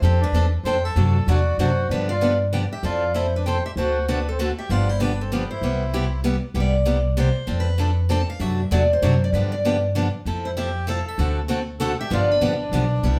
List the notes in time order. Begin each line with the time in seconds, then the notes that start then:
0.02 F2 F3 C4 D4 G4 A4
0.20 D4 B4
0.32 E2 F3 C4 D4 A4
0.63 F2 F3 C4 D4 A4 C5 G5
0.84 A4 E5
0.96 F#2 C3 F#3 A3 D4 F#4
1.27 E2 C3 F#3 A3 D4 F#4 D5
1.58 F#2 C3 F#3 A3 D4 F#4 C5
1.89 G2 D3 F3 B3 D4 G4 B4
2.09 F4 D5
2.21 D3 F3 B3 D4 G4
2.52 D3 F3 B3 D4 G4 B4 G5
2.72 G4 E5
2.83 F2 F3 C4 E4 F4 A4 D5
3.14 F3 C4 E4 A4 C5
3.36 D4 B4
3.46 F3 C4 E4 A4 C5 G5
3.65 G4 E5
3.76 D2 D3 A3 C4 F#4 A4 C5
4.08 D3 A3 C4 D4 F#4 A4 B4
4.29 C4 A4
4.39 D3 A3 C4 F#4 A4 F#5
4.59 G4 E5
4.69 G1 D3 F3 B3 D4 F4 G4 D5
4.89 E4 C5
5.00 D3 F3 B3 D4 G4 B4
5.20 C4 A4
5.32 D3 F3 B3 D4 G4
5.51 E4 C5
5.61 C2 C3 G3 B3 E4 G4
5.93 C3 G3 B3 E4 G4
6.24 C3 G3 B3 E4 G4
6.54 C2 C3 G3 B3 E4 G4
6.60 D5
6.85 C3 G3 B3 E4 G4
7.17 C3 G3 B3 E4 G4 C5
7.47 F2 F3 C4 D4 A4
7.60 B4
7.78 F3 C4 D4 A4
8.09 F3 C4 D4 A4 A5
8.30 F5
8.40 F#2 C3 F#3 A3 D4 F#4 E5
8.71 E2 C3 F#3 A3 D4 F#4 D5
8.93 C5
9.02 F#2 C3 F#3 A3 D4 F#4
9.24 D5
9.32 G2 D3 F3 B3 D4 G4 B4
9.52 D5
9.65 D3 F3 B3 D4 G4
9.95 D3 F3 B3 D4 G4
10.25 F2 F3 C4 E4 A4
10.45 E4 C5
10.57 F3 C4 E4 G4 A4 E5
10.87 F3 C4 E4 A4 F5
11.07 A4 E5
11.18 D2 D3 A3 C4 F#4 A4
11.48 D3 A3 C4 F#4 A4
11.80 D3 A3 C4 F#4 A4 F#5
11.99 G4 E5
12.10 G1 D3 F3 B3 D4 F4 G4 D5
12.31 D4 B4
12.41 A1 D3 F3 B3 D4 G4
12.72 B1 D3 F3 B3 D4 G4
13.03 C2 C3 G3 B3 E4 G4